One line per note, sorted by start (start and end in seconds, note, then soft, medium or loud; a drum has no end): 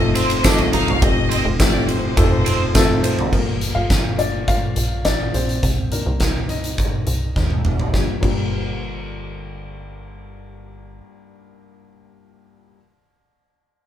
0.00 0.69 F1 loud
0.00 0.44 A3 medium
0.00 0.44 C4 medium
0.00 0.44 D#4 medium
0.00 0.45 F4 medium
0.00 0.45 A4 medium
0.00 3.03 C5 medium
0.00 0.16 D#5 medium
0.15 0.29 C4 medium
0.15 0.44 C5 medium
0.15 ride medium
0.15 tambourine medium
0.30 ride soft
0.44 0.98 A3 medium
0.44 0.98 C4 medium
0.44 0.58 D4 medium
0.44 0.98 D#4 medium
0.44 0.99 F4 medium
0.44 0.99 A4 medium
0.44 0.74 D#5 loud
0.44 kick loud
0.44 snare loud
0.44 ride medium
0.44 tambourine loud
0.58 floor tom medium
0.58 ride soft
0.73 1.00 G1 medium
0.73 0.87 D#4 medium
0.73 1.01 F5 medium
0.73 ride medium
0.73 tambourine medium
0.88 floor tom medium
1.02 1.42 F1 loud
1.02 1.56 A3 medium
1.02 1.56 C4 medium
1.02 1.56 D#4 medium
1.02 1.56 F4 medium
1.02 1.56 G4 medium
1.02 1.32 D#5 loud
1.02 kick loud
1.02 ride medium
1.30 1.44 C4 medium
1.30 1.46 D#5 medium
1.30 ride medium
1.30 tambourine soft
1.45 2.14 F1 loud
1.60 2.14 A3 medium
1.60 2.14 C4 medium
1.60 2.14 D#4 medium
1.60 2.14 F4 medium
1.60 2.14 G4 medium
1.60 1.88 D5 medium
1.60 kick loud
1.60 snare loud
1.60 ride medium
1.60 tambourine medium
1.88 3.05 C5 medium
1.88 ride soft
1.88 tambourine soft
2.17 3.00 F1 medium
2.17 2.71 A3 medium
2.17 2.71 C4 medium
2.17 2.71 D#4 medium
2.17 2.71 F4 medium
2.17 2.72 A4 medium
2.17 kick loud
2.17 ride medium
2.17 tambourine medium
2.46 2.60 C4 medium
2.46 ride medium
2.46 tambourine medium
2.75 3.29 A3 medium
2.75 3.03 C4 medium
2.75 3.29 D#4 medium
2.75 3.29 F4 medium
2.75 3.29 A4 loud
2.75 kick loud
2.75 snare loud
2.75 ride medium
2.75 tambourine loud
3.03 3.31 C4 medium
3.03 3.33 C5 medium
3.03 ride medium
3.03 tambourine medium
3.19 floor tom medium
3.32 3.73 G1 medium
3.32 3.73 A#3 medium
3.32 3.74 F4 medium
3.32 5.59 A4 soft
3.32 3.77 A#4 medium
3.32 kick medium
3.32 crash medium
3.61 closed hi-hat medium
3.75 3.89 G1 medium
3.75 4.16 F4 medium
3.75 4.16 F5 medium
3.90 4.59 G1 medium
3.90 kick medium
3.90 snare medium
3.90 closed hi-hat medium
4.18 4.44 A3 soft
4.18 4.45 A#3 soft
4.18 4.46 D4 medium
4.18 4.45 F4 soft
4.18 4.49 D5 medium
4.18 closed hi-hat medium
4.48 5.02 F4 medium
4.48 5.02 F5 medium
4.48 kick medium
4.48 closed hi-hat medium
4.76 5.30 A#1 medium
4.76 closed hi-hat medium
5.05 5.32 D4 medium
5.05 5.35 D5 medium
5.05 kick medium
5.05 snare medium
5.05 closed hi-hat medium
5.34 5.61 A#1 medium
5.34 5.89 C4 medium
5.34 5.94 C5 medium
5.34 closed hi-hat medium
5.49 closed hi-hat soft
5.63 6.03 C2 medium
5.63 kick medium
5.63 closed hi-hat medium
5.91 6.30 D#3 soft
5.91 6.46 A#3 medium
5.91 6.31 D4 medium
5.91 6.46 A#4 medium
5.91 closed hi-hat medium
6.06 6.20 C2 medium
6.20 6.89 C2 medium
6.20 kick medium
6.20 snare medium
6.20 closed hi-hat medium
6.49 7.62 D#4 medium
6.49 7.61 D#5 medium
6.49 closed hi-hat soft
6.64 closed hi-hat soft
6.78 kick medium
6.78 closed hi-hat medium
7.07 7.34 C2 medium
7.07 closed hi-hat medium
7.36 7.63 D#2 medium
7.36 kick medium
7.36 snare soft
7.51 high tom soft
7.65 7.92 F1 medium
7.65 mid tom medium
7.80 floor tom medium
7.92 8.10 G1 medium
7.92 8.10 G2 medium
7.92 8.09 A#3 medium
7.92 8.10 D4 medium
7.92 8.11 F4 medium
7.92 8.11 G4 medium
7.92 kick medium
7.92 snare medium
8.21 11.01 G1 medium
8.21 11.71 G2 medium
8.21 11.70 A#3 medium
8.21 11.71 D4 medium
8.21 11.72 F4 medium
8.21 kick medium
8.21 crash medium
8.25 11.72 G4 medium